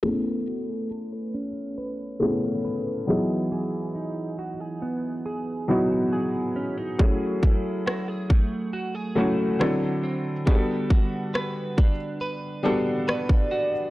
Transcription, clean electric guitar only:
\new Staff \with { instrumentName = "Clean electric guitar" } { \time 4/4 \key a \lydian \tempo 4 = 69 <a b'>8 fis'16 gis'16 a'16 b'16 cis'8 b'8 cis'8 b'8 e8 | <e gis'>8 dis'8 fis'16 gis'16 b8 gis'8 b8 gis'8 cis'16 dis'16 | <fis gis'>8 e'8 fis'16 gis'16 a8 fis'16 gis'16 a8 d8 c'8 | <g b'>8 fis'8 b'8 d'8 b'8 d'8 b'8 fis'8 | }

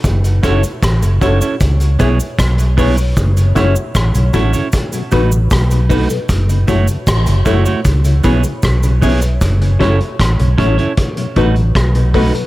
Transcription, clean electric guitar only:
\new Staff \with { instrumentName = "Clean electric guitar" } { \time 4/4 \key fis \dorian \tempo 4 = 77 r8 <cis' e' a' cis''>16 r8. <cis' e' a' cis''>16 <cis' e' a' cis''>16 r8 <b e' gis' cis''>16 r8. <b e' gis' cis''>16 r16 | r8 <cis' e' a' cis''>16 r8. <cis' e' a' cis''>16 <cis' e' a' cis''>16 r8 <a dis' fis' b'>16 r8. <a dis' fis' b'>16 r16 | r8 <a e' fis' cis''>16 r8. <a e' fis' cis''>16 <a e' fis' cis''>16 r8 <b e' gis' cis''>16 r8. <b e' gis' cis''>16 r16 | r8 <cis' e' a' cis''>16 r8. <cis' e' a' cis''>16 <cis' e' a' cis''>16 r8 <a dis' fis' b'>16 r8. <a dis' fis' b'>16 r16 | }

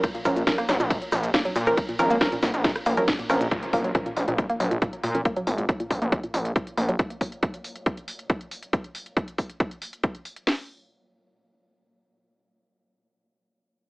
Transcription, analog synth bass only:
\new Staff \with { instrumentName = "Analog synth bass" } { \clef bass \time 4/4 \key bes \minor \tempo 4 = 138 r8 bes,,8 r8 bes,,16 bes,,8 r16 bes,,8 r8 bes,8 | r8 aes,,8 r8 bes,,16 bes,,8 r16 bes,,8 r8 bes,,8 | r8 bes,,8 r8 bes,,16 bes,,8 r16 bes,,8 r8 bes,8 | r8 aes,,8 r8 bes,,16 bes,,8 r16 bes,,8 r8 bes,,8 |
r1 | r1 | r1 | r1 | }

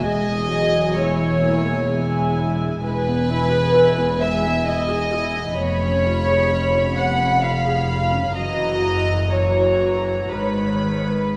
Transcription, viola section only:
\new Staff \with { instrumentName = "Viola section" } { \time 3/4 \key cis \dorian \tempo 4 = 65 << { gis'4 e'4 e'4 | gis16 b16 e'16 gis'16 e'16 b16 gis16 b16 e'16 gis'16 e'16 b16 | b16 cis'16 eis'16 gis'16 eis'16 cis'16 b16 cis'16 eis'16 gis'16 eis'16 cis'16 | fis'4 fis'4 b'4 | } \\ { gis8 fis8 gis8 ais8 gis4 | gis2.~ | gis2. | e4 e4 dis4 | } >> }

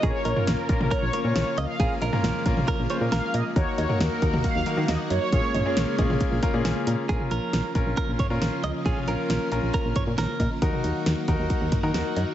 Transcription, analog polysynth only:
\new Staff \with { instrumentName = "Analog polysynth" } { \time 4/4 \key bes \minor \tempo 4 = 136 des''8 des''8 bes'8 bes'8 des''8 des''8 des''8 f''8~ | f''4 r2 f''8 ees''8 | des''8 des''8 bes'4 f''4 ees''8 des''8~ | des''2.~ des''8 r8 |
r1 | r1 | r1 | }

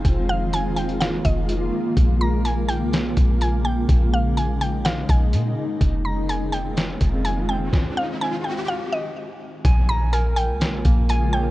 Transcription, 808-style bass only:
\new Staff \with { instrumentName = "808-style bass" } { \clef bass \time 4/4 \key bes \dorian \tempo 4 = 125 f,,2~ f,,8 f,,4 r8 | bes,,4.~ bes,,16 c,16. bes,,16. bes,,4. | bes,,2~ bes,,8 bes,,8 bes,8 r8 | f,,2~ f,,8 f,,4. |
r1 | bes,,4.~ bes,,16 c,16. bes,,16. bes,,4. | }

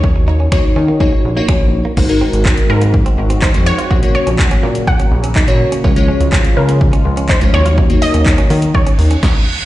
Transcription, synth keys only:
\new Staff \with { instrumentName = "Synth keys" } { \time 4/4 \key ees \dorian \tempo 4 = 124 <bes ees' ges' des''>8. r16 <bes ees' ges' des''>8. r16 <bes ees' ges' des''>8 r16 <bes ees' ges' des''>8. r8 | <aes ees' ges' c''>16 <aes ees' ges' bes'>4~ <aes ees' ges' bes'>16 r4. r16 <aes ees' ges' c''>8 r16 | <bes des' ges' des''>16 <bes des' ges' des''>4~ <bes des' ges' des''>16 r4. r16 <bes des' ges' des''>8 r16 | <aes des' f' des''>16 <aes des' f' des''>4~ <aes des' f' des''>16 r4. r16 <aes des' f' des''>16 <bes ees' ges' des''>8 |
r16 <bes ees' ges' des''>4~ <bes ees' ges' des''>16 r2 r8 | }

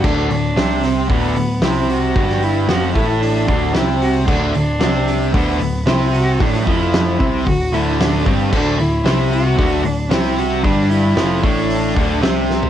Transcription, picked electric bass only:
\new Staff \with { instrumentName = "Picked electric bass" } { \clef bass \time 4/4 \key c \lydian \tempo 4 = 113 d,,8 d,,8 c,4 d,,8 d,,8 c,4 | g,,4 f,,8 a,,4 d,,8 c,4 | d,,8 d,,8 c,4 d,,8 d,,8 c,4 | a,,8 f,,4 c,8 d,,8 d,,4 g,,8 |
d,,8 d,,8 c,4 d,,8 d,,8 c,4 | g,,4 f,,8 a,,4 d,,8 c,4 | }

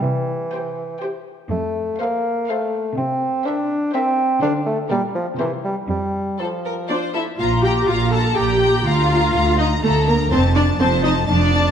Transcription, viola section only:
\new Staff \with { instrumentName = "Viola section" } { \time 3/4 \key f \major \tempo 4 = 123 << { r4 g'4 g'4 | r4 a'4 a'4 | r4 bes'4 bes'4 | a'4 g'4 g'4 |
r4 f'4 f'4 | \key g \minor r2. | r2. | r2. | } \\ { r2. | r2. | r2. | r2. |
r2 d'8 e'8 | f'8 g'8 f'8 a'8 g'4 | f'4. ees'8 a8 bes8 | c'8 d'8 c'8 ees'8 d'4 | } >> }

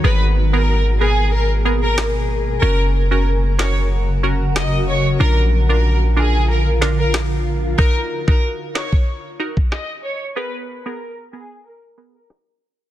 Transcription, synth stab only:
\new Staff \with { instrumentName = "Synth stab" } { \time 4/4 \key ees \minor \tempo 4 = 93 <ces' aes' bes'>8. <ces' aes' bes'>8. <ces' aes' bes'>8 r8 <ces' aes' bes'>16 r4 r16 | <des' ges' bes'>8. <des' ges' bes'>8. <des' ges' bes'>8 r8 <des' ges' bes'>16 r4 r16 | <d' f' bes'>8. <d' f' bes'>8. <d' f' bes'>8 r8 <d' f' bes'>16 r4 r16 | <ees' ges' bes'>8. <ees' ges' bes'>8. <ees' ges' bes'>8 r8 <ees' ges' bes'>16 r4 r16 |
<ces' aes' bes'>8. <ces' aes' bes'>8. <ces' aes' bes'>8 r8 <ces' aes' bes'>16 r4 r16 | }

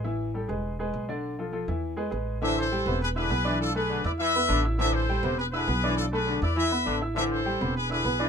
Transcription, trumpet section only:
\new Staff \with { instrumentName = "Trumpet section" } { \time 4/4 \key a \minor \tempo 4 = 203 r1 | r1 | <c'' e''>8 <a' c''>4. <gis' b'>8 <gis' b'>4. | <f' a'>8 <gis' b'>4 <b' d''>8 <b' e''>4. r8 |
<c'' e''>8 <a' c''>4. <gis' b'>8 <gis' b'>4. | <f' a'>8 <gis' b'>4 <b' d''>8 <b' e''>4. r8 | <c'' e''>8 <a' c''>4. <gis' b'>8 <gis' b'>4. | }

